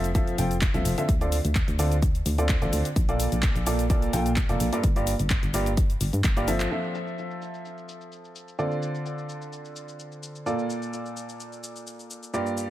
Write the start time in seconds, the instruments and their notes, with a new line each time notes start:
Already playing: fm bass F1
0.04 closed hi-hat, shaker
0.15 upright piano F3 C4 F4 A4 E5, kick, closed hi-hat, shaker
0.27 closed hi-hat, shaker
0.38 fm bass F1, upright piano F3 C4 F4 A4 G5, open hi-hat, shaker
0.51 closed hi-hat, shaker
0.61 kick, clap, closed hi-hat, shaker
0.74 fm bass C2, upright piano F3 C4 F4 A4 E5, closed hi-hat, shaker
0.85 fm bass F1, open hi-hat, shaker
0.98 upright piano D3 C4 F4 A4 E5, closed hi-hat, shaker
1.09 fm bass D2, kick, closed hi-hat, shaker
1.21 upright piano D3 C4 F4 A4 D5, closed hi-hat, shaker
1.32 open hi-hat, shaker
1.45 fm bass D2, closed hi-hat, shaker
1.55 kick, clap, closed hi-hat, shaker
1.68 fm bass D2, closed hi-hat, shaker
1.79 upright piano D3 C4 F4 A4 D5, open hi-hat, shaker
1.92 closed hi-hat, shaker
2.02 kick, closed hi-hat, shaker
2.15 closed hi-hat, shaker
2.26 fm bass D2, open hi-hat, shaker
2.38 upright piano D3 C4 F4 A4 D5, closed hi-hat, shaker
2.49 kick, clap, closed hi-hat, shaker
2.62 fm bass A1, upright piano D3 C4 F4 A4 D5, closed hi-hat, shaker
2.73 fm bass D2, open hi-hat, shaker
2.85 closed hi-hat, shaker
2.96 fm bass A#1, kick, closed hi-hat, shaker
3.09 upright piano A#2 A#3 F4 A4 D5, closed hi-hat, shaker
3.20 open hi-hat, shaker
3.32 fm bass A#1, closed hi-hat, shaker
3.43 kick, clap, closed hi-hat, shaker
3.56 fm bass A#1, closed hi-hat, shaker
3.67 upright piano A#2 A#3 F4 A4 D5, open hi-hat, shaker
3.79 closed hi-hat, shaker
3.90 upright piano A#2 A#3 F4 A4 D5, kick, closed hi-hat, shaker
4.02 closed hi-hat, shaker
4.13 fm bass A#1, upright piano A#2 A#3 F4 A4 G5, open hi-hat, shaker
4.26 closed hi-hat, shaker
4.36 kick, clap, closed hi-hat, shaker
4.49 fm bass F1, upright piano A#2 A#3 F4 A4 D5, closed hi-hat, shaker
4.60 fm bass A#1, open hi-hat, shaker
4.73 upright piano G2 A#3 F4 A4 D5, closed hi-hat, shaker
4.84 fm bass G1, kick, closed hi-hat, shaker
4.96 upright piano G2 A#3 F4 G4 D5, closed hi-hat, shaker
5.07 open hi-hat, shaker
5.19 fm bass G1, closed hi-hat, shaker
5.30 kick, clap, closed hi-hat, shaker
5.43 fm bass G1, closed hi-hat, shaker
5.54 upright piano G2 A#3 F4 G4 D5, open hi-hat, shaker
5.66 closed hi-hat, shaker
5.77 kick, closed hi-hat, shaker
5.90 closed hi-hat, shaker
6.01 fm bass G1, open hi-hat, shaker
6.13 fm bass G2, closed hi-hat, shaker
6.24 fm bass G1, kick, clap, closed hi-hat, shaker
6.37 upright piano G2 A#3 F4 G4 D5, closed hi-hat, shaker
6.48 upright piano F3 C4 F4 A4 E5, open hi-hat, shaker
6.60 clap, closed hi-hat, shaker
6.71 upright piano F3 C4 F4 A4 E5, shaker
6.84 shaker
6.95 shaker
7.07 shaker
7.18 shaker
7.31 shaker
7.42 shaker
7.54 shaker
7.65 shaker
7.78 shaker
7.89 shaker
8.01 shaker
8.12 shaker
8.25 shaker
8.36 shaker
8.48 shaker
8.59 upright piano D3 C4 F4 A4 D5, shaker
8.71 shaker
8.82 shaker
8.95 shaker
9.06 shaker
9.18 shaker
9.29 shaker
9.42 shaker
9.53 shaker
9.65 shaker
9.76 shaker
9.89 shaker
9.99 shaker
10.12 shaker
10.23 shaker
10.35 shaker
10.46 upright piano A#2 A#3 F4 A4 D5, shaker
10.59 shaker
10.70 shaker
10.82 shaker
10.93 shaker
11.06 shaker
11.17 shaker
11.29 shaker
11.40 shaker
11.53 shaker
11.64 shaker
11.76 shaker
11.87 shaker
12.00 shaker
12.10 shaker
12.23 shaker
12.34 upright piano G2 A#3 F4 G4 D5, shaker
12.46 shaker
12.57 shaker